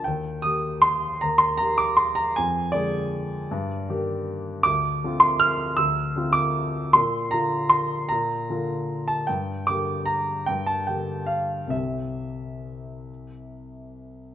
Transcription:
<<
  \new Staff \with { instrumentName = "Grand piano" } { \time 3/4 \key ees \lydian \tempo 4 = 154 g''4 ees'''4 c'''4 | bes''8 c'''8 bes''8 d'''8 c'''8 bes''8 | aes''4 d''2~ | d''2~ d''8 r8 |
\key c \mixolydian d'''4. c'''8 f'''4 | e'''4. d'''4. | c'''4 bes''4 c'''4 | bes''2~ bes''8 a''8 |
g''4 d'''4 bes''4 | g''8 a''8 g''4 f''4 | e''2.~ | e''2 r4 | }
  \new Staff \with { instrumentName = "Grand piano" } { \clef bass \time 3/4 \key ees \lydian ees,4 <ees bes g'>2 | ees,4 <ees bes g'>2 | f,4 <d aes aes'>2 | g,4 <ees bes g'>2 |
\key c \mixolydian d,4 <d c' f'>2 | d,4 <d c' f'>2 | bes,4 <d bes f'>2 | bes,4 <d bes f'>2 |
g,4 <d bes g'>2 | g,4 <d bes g'>2 | <c, c c' g'>2.~ | <c, c c' g'>2. | }
>>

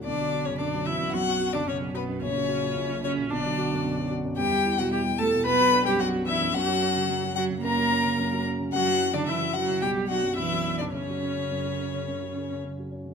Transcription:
<<
  \new Staff \with { instrumentName = "Violin" } { \time 4/4 \key b \minor \tempo 4 = 110 d''8. cis''16 d''8 e''8 fis''8. d''16 cis''8 b'8 | cis''4. cis''8 d''4. r8 | \key fis \phrygian g''8. fis''16 g''8 a''8 b''8. g''16 fis''8 e''8 | fis''4. fis''8 ais''4. r8 |
fis''8. d''16 e''8 fis''8 g''8 fis''8 e''8. d''16 | cis''2. r4 | }
  \new Staff \with { instrumentName = "Viola" } { \time 4/4 \key b \minor d'8. cis'16 d'8 e'8 fis'8. d'16 cis'8 b8 | cis'4. cis'8 d'4. r8 | \key fis \phrygian g'8. fis'16 g'8 a'8 b'8. g'16 fis'8 e'8 | fis'4. fis'8 ais'4. r8 |
fis'8. d'16 e'8 fis'8 g'8 fis'8 e'8. d'16 | cis'2. r4 | }
  \new Staff \with { instrumentName = "Cello" } { \clef bass \time 4/4 \key b \minor d8. cis16 d8 e8 fis8. d16 cis8 b,8 | cis4. cis8 d4. r8 | \key fis \phrygian g8. fis16 g8 a8 b8. g16 fis8 e8 | fis4. fis8 ais4. r8 |
fis8. d16 e8 fis8 g8 fis8 e8. d16 | cis2. r4 | }
  \new Staff \with { instrumentName = "Grand piano" } { \clef bass \time 4/4 \key b \minor b,,16 fis16 fis'16 fis,16 b,,16 fis16 fis'16 fis,16 b,,16 fis16 fis'16 fis,16 b,,16 fis16 fis'16 fis,16 | ais,,16 fis16 fis'16 ais,16 ais,,16 fis16 fis'16 ais,16 b,,16 fis16 fis'16 fis,16 b,,16 fis16 fis'16 fis,16 | \key fis \phrygian e,16 g16 e'16 b,16 e,16 g16 e'16 b,16 b,,16 fis16 d'16 fis,16 b,,16 fis16 d'16 fis,16 | fis,16 fis16 cis'16 cis16 fis,16 fis16 cis'16 cis16 fis,16 fis16 cis'16 cis16 fis,16 fis16 cis'16 cis16 |
fis,16 fis16 e'16 cis16 fis,16 fis16 e'16 cis16 b,,16 fis16 d'16 fis,16 b,,16 fis16 d'16 fis,16 | fis,16 fis16 cis'16 cis16 fis,16 fis16 cis'16 cis16 fis,16 fis16 cis'16 cis16 fis,16 fis16 cis'16 cis16 | }
>>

